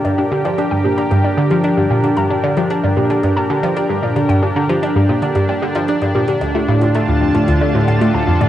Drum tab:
HH |x--xx--xx--xx--x|x--xx--xx--xx--x|x--xx--xx--xxx-x|x--xx--xx--xx--x|
T1 |--o--o--o--o----|-o--o--o--o--o--|o--o--o--o--o--o|o--o--o--o--o--o|